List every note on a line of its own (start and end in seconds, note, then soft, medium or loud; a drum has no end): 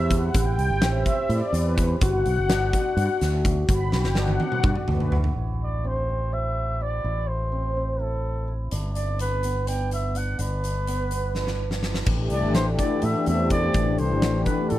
0.00 0.28 E2 medium
0.00 0.83 C4 medium
0.00 1.45 D4 medium
0.00 0.10 E4 medium
0.00 1.70 F#4 medium
0.00 2.12 G4 loud
0.00 0.10 F#5 medium
0.11 0.35 E4 medium
0.11 kick medium
0.11 closed hi-hat medium
0.34 0.55 A1 medium
0.34 1.29 E4 medium
0.34 0.84 G5 loud
0.34 kick loud
0.34 closed hi-hat medium
0.58 0.69 C2 medium
0.58 closed hi-hat medium
0.70 0.82 G1 medium
0.82 1.03 A1 medium
0.82 1.06 C4 medium
0.82 1.33 E5 medium
0.82 snare loud
0.82 closed hi-hat medium
1.06 5.07 C4 medium
1.06 kick medium
1.06 closed hi-hat medium
1.29 1.40 A2 medium
1.29 1.78 E4 medium
1.29 closed hi-hat medium
1.53 1.94 E2 medium
1.53 closed hi-hat medium
1.77 5.26 E4 medium
1.77 kick medium
1.77 closed hi-hat medium
2.01 2.22 G1 loud
2.01 2.96 F#4 medium
2.01 5.09 F#4 loud
2.01 3.18 F#5 medium
2.01 kick loud
2.01 closed hi-hat medium
2.26 2.36 B1 medium
2.26 closed hi-hat medium
2.38 2.50 F#1 medium
2.50 2.71 G1 medium
2.50 2.73 D4 medium
2.50 snare loud
2.50 closed hi-hat medium
2.73 4.18 D4 medium
2.73 kick medium
2.73 closed hi-hat medium
2.97 3.07 G2 medium
2.97 3.44 F#4 medium
2.97 closed hi-hat medium
3.21 3.63 D2 medium
3.21 snare soft
3.21 closed hi-hat medium
3.45 3.69 F#4 medium
3.45 kick medium
3.45 closed hi-hat medium
3.68 3.89 G1 loud
3.68 4.65 F#4 medium
3.68 kick loud
3.68 closed hi-hat medium
3.92 4.03 B1 medium
3.92 snare medium
4.04 4.17 F#1 medium
4.04 snare medium
4.15 4.38 G1 medium
4.15 4.42 D4 medium
4.15 4.62 F#5 medium
4.15 snare medium
4.28 high tom medium
4.40 8.16 D4 medium
4.40 high tom medium
4.52 mid tom medium
4.63 4.75 G2 medium
4.63 5.12 F#4 medium
4.63 kick loud
4.63 mid tom medium
4.76 mid tom medium
4.88 5.30 D2 medium
4.88 mid tom medium
5.00 floor tom medium
5.12 8.38 F#4 medium
5.12 floor tom loud
5.24 floor tom medium
5.36 7.01 A1 medium
5.36 6.33 E4 medium
5.63 5.89 D5 medium
5.84 6.09 C4 medium
5.84 6.35 C5 medium
6.09 7.51 C4 medium
6.33 6.80 E4 medium
6.33 6.84 E5 medium
6.81 7.04 E4 medium
6.81 7.29 D5 medium
7.04 8.69 A1 medium
7.04 7.99 E4 medium
7.27 8.03 C5 medium
7.52 7.76 C4 medium
7.76 9.27 C4 medium
7.99 8.47 E4 medium
7.99 8.55 A4 medium
8.48 11.96 E4 medium
8.71 10.37 G1 medium
8.71 9.67 D4 medium
8.71 closed hi-hat medium
8.95 9.18 D5 medium
8.95 closed hi-hat soft
9.19 9.44 B3 medium
9.19 9.69 B4 medium
9.19 closed hi-hat medium
9.43 10.87 B3 medium
9.43 closed hi-hat soft
9.67 10.14 D4 medium
9.67 9.92 G5 medium
9.67 closed hi-hat medium
9.91 10.19 E5 medium
9.91 closed hi-hat soft
10.15 10.39 D4 medium
10.15 10.40 F#5 medium
10.15 closed hi-hat soft
10.39 12.04 G1 medium
10.39 11.35 D4 medium
10.39 11.80 B4 medium
10.39 closed hi-hat medium
10.64 closed hi-hat soft
10.87 11.11 B3 medium
10.87 closed hi-hat medium
11.11 13.33 B3 medium
11.11 closed hi-hat medium
11.35 11.84 D4 medium
11.35 snare soft
11.47 snare soft
11.71 snare medium
11.83 13.51 D4 medium
11.83 snare medium
11.94 snare medium
12.06 12.28 A1 medium
12.06 14.79 E3 medium
12.06 14.79 A3 medium
12.06 14.79 D4 medium
12.06 12.62 G4 medium
12.06 14.79 G4 medium
12.06 kick medium
12.06 crash medium
12.30 12.41 C2 medium
12.30 12.54 D5 medium
12.30 closed hi-hat medium
12.43 12.55 G1 medium
12.55 12.76 A1 medium
12.55 13.80 F#4 medium
12.55 12.66 C5 medium
12.55 snare medium
12.55 closed hi-hat medium
12.78 14.45 E4 medium
12.78 13.05 D5 medium
12.78 kick medium
12.78 closed hi-hat medium
13.02 13.14 A2 medium
13.02 13.28 E5 medium
13.02 closed hi-hat medium
13.26 13.68 E2 medium
13.26 14.79 C4 medium
13.26 13.50 E5 medium
13.26 closed hi-hat medium
13.50 14.79 D4 medium
13.50 14.00 D5 loud
13.50 kick medium
13.50 closed hi-hat medium
13.74 13.96 A1 medium
13.74 14.28 G4 medium
13.74 kick loud
13.74 closed hi-hat medium
13.98 14.10 C2 medium
13.98 14.44 C5 medium
13.98 closed hi-hat medium
14.12 14.24 G1 medium
14.22 14.44 A1 medium
14.22 14.79 F#4 medium
14.22 snare medium
14.22 closed hi-hat medium
14.45 14.79 E4 medium
14.45 14.71 B4 medium
14.45 kick medium
14.45 closed hi-hat medium
14.69 14.79 A2 medium
14.69 14.79 A4 medium
14.69 closed hi-hat medium